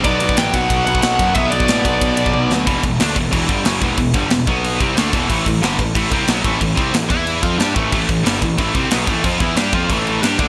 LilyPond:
<<
  \new Staff \with { instrumentName = "Lead electric guitar" } { \time 4/4 \key e \minor \tempo 4 = 183 d''4 g''8 fis''4 fis''8 fis''4 | e''8 d''2. r8 | r1 | r1 |
r1 | r1 | r1 | r1 | }
  \new Staff \with { instrumentName = "Distorted electric guitar" } { \clef bass \time 4/4 \key e \minor <b, fis b>1 | <b, fis b>1 | <e, b, e>8 <e, b,>8 <d a d'>8 <e, b,>8 <e, b, e>8 <g, d g>8 <fis, cis fis>8 <e, b, e>8 | <e, b,>8 <g, d g>8 <e, b,>8 <b, fis b>4 <c g c'>8 <d a d'>8 <e, b, e>8 |
<a, e a>8 <a, e>8 <g, d g>8 <a, e>8 <a, e a>8 <c g c'>8 <b, fis b>8 <a, e a>8 | <a, e>8 <c g c'>8 <a, e>8 <e b e'>4 <f c' f'>8 <g d' g'>8 <a, e a>8 | <a, e a>8 <a, e>8 <g, d g>8 <a, e>8 <a, e a>8 <c g c'>8 <b, fis b>8 <a, e a>8 | <f c' f'>8 <e b e'>8 <g d' g'>8 <f c' f'>8 <a, e a>4 <g d' g'>8 <d a d'>8 | }
  \new Staff \with { instrumentName = "Picked electric bass" } { \clef bass \time 4/4 \key e \minor b,,8 b,,8 a,,8 b,,8 b,,8 b,,8 b,,8 fis,8 | b,,8 b,,8 a,8 b,,8 b,,8 b,,8 b,,8 d,8 | e,,8 e,,8 d,8 e,,8 e,,8 g,,8 fis,,8 e,,8 | e,,8 g,,8 e,,8 b,,4 c,8 d,8 e,,8 |
a,,8 a,,8 g,,8 a,,8 a,,8 c,8 b,,8 a,,8 | a,,8 c,8 a,,8 e,4 f,8 g,8 a,,8 | a,,8 a,,8 g,,8 a,,8 a,,8 c,8 b,,8 a,,8 | f,8 e,8 g,8 f,8 a,,4 g,8 d,8 | }
  \new DrumStaff \with { instrumentName = "Drums" } \drummode { \time 4/4 <bd cymr>8 cymr16 bd16 <cymr sn>8 <bd cymr>8 <bd cymr>8 cymr16 bd16 <cymr sn>8 <bd cymr>8 | <bd cymr>8 cymr16 bd16 <cymr sn>8 <bd cymr>8 <bd cymr>8 cymr16 bd16 tommh8 sn8 | <cymc bd>8 <cymc bd>8 <cymc sn>8 <cymc bd>8 <cymc bd>8 <cymc bd>8 <cymc sn>8 <cymc bd>8 | <cymc bd>8 <cymc bd>8 <cymc sn>8 <cymc bd>8 cymc8 <cymc bd>8 <cymc sn>8 <cymc bd>8 |
<cymc bd>8 <cymc bd>8 <cymc sn>8 <cymc bd>8 <cymc bd>8 <cymc bd>8 <cymc sn>8 <cymc bd>8 | <cymc bd>8 <cymc bd>8 <cymc sn>8 <cymc bd>8 cymc8 <cymc bd>8 <cymc sn>8 <cymc bd>8 | <cymc bd>8 <cymc bd>8 <cymc sn>8 <cymc bd>8 <cymc bd>8 <cymc bd>8 <cymc sn>8 <cymc bd>8 | <cymc bd>8 <cymc bd>8 <cymc sn>8 <cymc bd>8 <cymc bd>8 cymc8 <cymc sn>8 <cymc bd>8 | }
>>